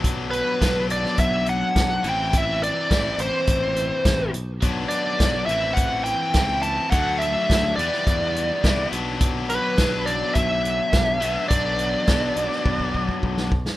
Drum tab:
HH |x-x-x-x-x-x-x-x-|x-x-x-x-x-x-x-x-|x-x-x-x-x-x-x-x-|x-x-x-x-x-x-x-x-|
SD |----o--o----o---|----o-------o---|----o-------o---|----o--o----o---|
BD |o---o---o---o---|o---o---o---o---|o---o---o---o---|o---o---o---o---|

HH |x-x-x-x-x-x-x-x-|x-x-x-x---------|
SD |----o-------o---|----o--o-----o-o|
BD |o---o---o---o---|o---o---ooooo-o-|